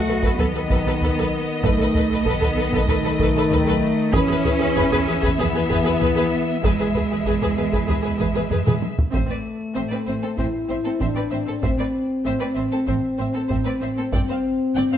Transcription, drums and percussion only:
0.23 taiko medium
0.39 taiko low soft
0.70 taiko medium
1.01 taiko low medium
1.64 taiko loud
1.95 taiko low medium
2.26 taiko medium
2.42 taiko low soft
2.73 taiko medium
2.88 taiko low medium
3.19 taiko medium
3.51 taiko low medium
4.13 taiko loud
4.46 taiko low medium
4.76 taiko medium
4.92 taiko low soft
5.23 taiko medium
5.39 taiko low medium
5.71 taiko medium
6.02 taiko low medium
6.64 taiko medium
6.95 taiko low medium
7.26 taiko medium
7.42 taiko low soft
7.73 taiko medium
7.89 taiko low medium
8.20 taiko medium
8.51 taiko low-mid medium
8.67 taiko mid medium
8.82 taiko high medium
8.99 taiko low medium
9.14 taiko medium
9.14 triangle soft
10.38 taiko medium
11.01 taiko medium
11.63 taiko medium
12.88 taiko medium
13.50 taiko medium
14.13 taiko medium

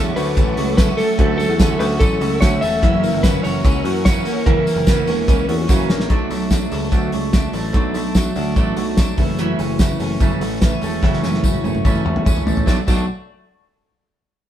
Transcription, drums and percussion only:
0.17 open hi-hat medium
0.17 tambourine medium
0.37 kick loud
0.37 hi-hat pedal medium
0.37 ride medium
0.37 tambourine medium
0.57 open hi-hat medium
0.57 tambourine soft
0.78 kick loud
0.78 snare loud
0.78 hi-hat pedal medium
0.78 ride medium
0.78 tambourine medium
0.98 open hi-hat medium
0.98 tambourine medium
1.19 kick loud
1.19 hi-hat pedal medium
1.19 ride medium
1.40 open hi-hat medium
1.40 tambourine medium
1.59 kick loud
1.59 snare loud
1.59 hi-hat pedal medium
1.59 ride medium
1.59 tambourine loud
1.80 open hi-hat medium
1.80 tambourine soft
2.00 kick loud
2.00 hi-hat pedal medium
2.00 ride medium
2.00 tambourine medium
2.21 open hi-hat medium
2.21 tambourine soft
2.42 kick loud
2.42 snare loud
2.42 hi-hat pedal medium
2.42 ride medium
2.42 tambourine medium
2.62 open hi-hat medium
2.62 tambourine medium
2.83 kick loud
2.83 hi-hat pedal medium
2.83 ride medium
3.03 open hi-hat medium
3.03 tambourine medium
3.24 kick loud
3.24 snare loud
3.24 hi-hat pedal medium
3.24 ride medium
3.24 tambourine medium
3.44 open hi-hat medium
3.44 tambourine medium
3.65 kick loud
3.65 hi-hat pedal medium
3.65 ride medium
3.65 tambourine medium
3.85 open hi-hat medium
4.05 kick loud
4.05 snare loud
4.05 hi-hat pedal medium
4.05 ride medium
4.05 tambourine medium
4.25 open hi-hat medium
4.25 tambourine medium
4.46 kick loud
4.46 hi-hat pedal medium
4.46 ride medium
4.67 open hi-hat medium
4.67 tambourine medium
4.87 kick loud
4.87 snare loud
4.87 hi-hat pedal medium
4.87 ride medium
4.87 tambourine loud
5.07 open hi-hat medium
5.07 tambourine medium
5.28 kick loud
5.28 hi-hat pedal medium
5.28 ride medium
5.28 tambourine medium
5.49 open hi-hat medium
5.69 kick loud
5.69 snare medium
5.69 tambourine medium
5.90 snare loud
5.90 tambourine medium
6.00 snare medium
6.10 kick loud
6.10 closed hi-hat medium
6.31 open hi-hat medium
6.31 tambourine medium
6.51 kick loud
6.51 snare loud
6.51 closed hi-hat medium
6.51 tambourine medium
6.72 open hi-hat medium
6.72 tambourine soft
6.92 kick loud
6.92 closed hi-hat medium
6.92 tambourine medium
7.12 open hi-hat medium
7.33 kick loud
7.33 snare loud
7.33 closed hi-hat medium
7.33 tambourine medium
7.53 open hi-hat medium
7.53 tambourine medium
7.74 kick loud
7.74 closed hi-hat medium
7.74 tambourine soft
7.94 open hi-hat medium
7.94 tambourine soft
8.15 kick loud
8.15 snare loud
8.15 closed hi-hat medium
8.15 tambourine medium
8.35 open hi-hat medium
8.35 tambourine soft
8.56 kick loud
8.56 closed hi-hat medium
8.56 tambourine medium
8.77 open hi-hat medium
8.77 tambourine soft
8.97 kick loud
8.97 snare loud
8.97 closed hi-hat medium
8.97 tambourine medium
9.17 kick loud
9.17 open hi-hat medium
9.17 tambourine medium
9.39 closed hi-hat medium
9.59 open hi-hat medium
9.59 tambourine soft
9.79 kick loud
9.79 snare loud
9.79 closed hi-hat medium
9.79 tambourine medium
10.00 open hi-hat medium
10.00 tambourine soft
10.20 kick loud
10.20 closed hi-hat medium
10.20 tambourine medium
10.41 open hi-hat medium
10.41 tambourine soft
10.62 kick loud
10.62 snare loud
10.62 closed hi-hat medium
10.62 tambourine medium
10.81 open hi-hat medium
10.81 tambourine medium
11.03 kick loud
11.03 snare medium
11.13 snare medium
11.23 snare medium
11.23 tambourine medium
11.34 snare medium
11.44 kick loud
11.44 high tom medium
11.44 tambourine medium
11.54 high tom medium
11.64 high tom medium
11.64 tambourine soft
11.75 mid tom medium
11.85 kick loud
11.85 mid tom medium
11.85 tambourine medium
11.96 mid tom medium
12.06 mid tom medium
12.16 mid tom medium
12.26 kick loud
12.26 mid tom loud
12.26 tambourine medium
12.37 floor tom medium
12.47 floor tom loud
12.47 tambourine soft
12.57 floor tom medium
12.67 kick loud
12.67 snare medium
12.67 tambourine medium
12.88 kick loud
12.88 crash medium
12.88 tambourine medium

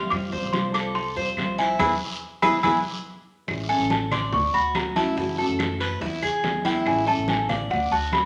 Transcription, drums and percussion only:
0.11 high bongo medium
0.11 high conga soft
0.11 long guiro medium
0.11 claves medium
0.32 high bongo soft
0.32 high conga soft
0.53 high bongo medium
0.53 high conga medium
0.53 short guiro medium
0.74 high bongo soft
0.74 high conga soft
0.74 short guiro medium
0.74 claves medium
0.95 high bongo medium
0.95 high conga soft
0.95 long guiro medium
1.16 high bongo soft
1.16 high conga soft
1.37 high bongo soft
1.37 low bongo medium
1.37 high conga soft
1.37 short guiro medium
1.37 claves medium
1.59 short guiro medium
1.79 low bongo medium
1.79 high conga loud
1.79 long guiro medium
1.79 claves medium
2.42 low bongo medium
2.42 high conga medium
2.42 long guiro medium
2.42 claves medium
2.63 low bongo loud
2.63 high conga loud
2.63 long guiro medium
2.63 claves medium
3.48 high bongo medium
3.48 high conga soft
3.48 long guiro medium
3.48 claves medium
3.69 high conga soft
3.90 high bongo medium
3.90 high conga medium
3.90 short guiro medium
4.11 high conga soft
4.11 low conga medium
4.11 short guiro medium
4.11 claves medium
4.33 high bongo medium
4.33 high conga soft
4.33 low conga medium
4.33 long guiro medium
4.53 high conga soft
4.75 high bongo medium
4.75 low bongo medium
4.75 high conga medium
4.75 short guiro medium
4.75 claves medium
4.96 high conga medium
4.96 short guiro medium
5.17 high bongo medium
5.17 high conga soft
5.17 long guiro medium
5.38 high bongo soft
5.38 high conga soft
5.59 high bongo medium
5.59 high conga medium
5.59 short guiro medium
5.59 claves medium
5.80 short guiro medium
6.02 high bongo medium
6.02 high conga soft
6.02 long guiro medium
6.23 high bongo soft
6.23 high conga soft
6.23 claves medium
6.44 high bongo medium
6.44 low bongo medium
6.44 high conga medium
6.44 short guiro medium
6.65 high conga medium
6.65 short guiro medium
6.86 high bongo medium
6.86 high conga soft
6.86 long guiro medium
6.86 claves medium
7.07 high conga soft
7.28 high bongo medium
7.28 high conga medium
7.28 short guiro medium
7.49 high conga soft
7.49 low conga medium
7.49 short guiro medium
7.49 claves medium
7.71 high bongo medium
7.71 high conga soft
7.71 long guiro medium
7.91 high conga soft
8.12 high bongo medium
8.12 low bongo medium
8.12 high conga medium
8.12 short guiro medium
8.12 claves medium

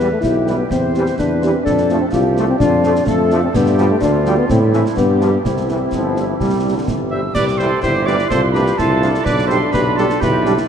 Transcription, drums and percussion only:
0.00 snare soft
0.23 concert bass drum medium
0.23 snare medium
0.47 snare soft
0.71 concert bass drum medium
0.71 snare medium
0.95 snare soft
1.06 snare medium
1.19 concert bass drum medium
1.19 snare medium
1.42 snare medium
1.66 concert bass drum medium
1.66 snare medium
1.78 snare soft
1.89 snare soft
2.13 concert bass drum medium
2.13 snare medium
2.37 snare soft
2.60 concert bass drum medium
2.60 snare medium
2.83 snare medium
2.95 snare medium
3.07 concert bass drum medium
3.07 snare medium
3.30 snare soft
3.55 concert bass drum medium
3.55 snare medium
3.55 crash soft
3.66 snare medium
3.78 snare soft
4.02 concert bass drum medium
4.02 snare medium
4.26 snare medium
4.50 concert bass drum medium
4.50 snare medium
4.73 snare soft
4.86 snare medium
4.97 concert bass drum medium
4.97 snare medium
5.21 snare soft
5.45 concert bass drum medium
5.45 snare medium
5.57 snare soft
5.69 snare soft
5.92 concert bass drum medium
5.92 snare medium
6.16 snare soft
6.40 concert bass drum medium
6.40 snare medium
6.88 concert bass drum medium
6.88 snare medium
7.35 concert bass drum medium
7.35 snare medium
7.35 crash medium
7.48 snare medium
7.59 snare soft
7.83 concert bass drum medium
7.83 snare medium
8.07 snare medium
8.19 snare medium
8.31 concert bass drum medium
8.31 snare medium
8.55 snare soft
8.66 snare medium
8.79 concert bass drum medium
8.79 snare medium
9.02 snare medium
9.14 snare medium
9.26 concert bass drum medium
9.26 snare medium
9.38 snare medium
9.50 snare soft
9.74 concert bass drum medium
9.74 snare medium
9.98 snare medium
10.10 snare medium
10.22 concert bass drum medium
10.22 snare medium
10.46 snare medium
10.57 snare medium

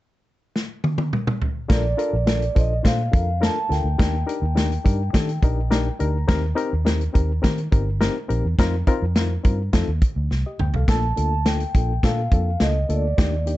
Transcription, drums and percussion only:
0.56 snare medium
0.84 high tom medium
0.98 high tom medium
1.13 mid tom medium
1.27 mid tom medium
1.42 floor tom medium
1.70 kick loud
1.70 snare loud
1.70 closed hi-hat medium
1.99 closed hi-hat medium
2.27 snare loud
2.27 closed hi-hat medium
2.42 closed hi-hat soft
2.56 kick medium
2.56 closed hi-hat medium
2.85 kick medium
2.85 snare loud
2.85 closed hi-hat medium
3.13 kick loud
3.13 closed hi-hat medium
3.43 snare medium
3.43 closed hi-hat medium
3.72 snare soft
3.72 closed hi-hat medium
3.99 kick medium
3.99 snare loud
3.99 closed hi-hat medium
4.29 closed hi-hat medium
4.57 snare medium
4.57 closed hi-hat medium
4.72 closed hi-hat soft
4.86 kick medium
4.86 closed hi-hat medium
5.14 kick medium
5.14 snare loud
5.14 closed hi-hat medium
5.29 closed hi-hat soft
5.42 kick loud
5.42 closed hi-hat medium
5.72 snare medium
5.72 closed hi-hat medium
6.00 closed hi-hat medium
6.29 kick loud
6.29 snare loud
6.29 closed hi-hat medium
6.57 closed hi-hat medium
6.86 snare medium
6.86 closed hi-hat medium
7.01 closed hi-hat soft
7.15 kick medium
7.15 closed hi-hat medium
7.44 kick medium
7.44 snare loud
7.44 closed hi-hat medium
7.58 closed hi-hat soft
7.72 kick loud
7.72 closed hi-hat medium
8.01 snare medium
8.01 closed hi-hat medium
8.30 closed hi-hat medium
8.59 kick loud
8.59 snare loud
8.59 closed hi-hat medium
8.87 kick medium
8.87 closed hi-hat medium
9.16 snare loud
9.16 closed hi-hat medium
9.44 kick medium
9.44 closed hi-hat medium
9.73 kick medium
9.73 snare loud
9.73 closed hi-hat medium
10.02 kick loud
10.02 closed hi-hat medium
10.31 snare soft
10.59 mid tom medium
10.74 floor tom medium
10.88 kick medium
10.88 snare loud
10.88 closed hi-hat medium
11.17 closed hi-hat medium
11.46 snare medium
11.46 closed hi-hat medium
11.60 closed hi-hat soft
11.75 kick medium
11.75 closed hi-hat medium
12.03 kick medium
12.03 snare loud
12.03 closed hi-hat medium
12.32 kick medium
12.32 closed hi-hat medium
12.60 snare medium
12.60 closed hi-hat medium
12.89 closed hi-hat medium
13.18 kick loud
13.18 snare loud
13.18 closed hi-hat medium
13.47 closed hi-hat medium

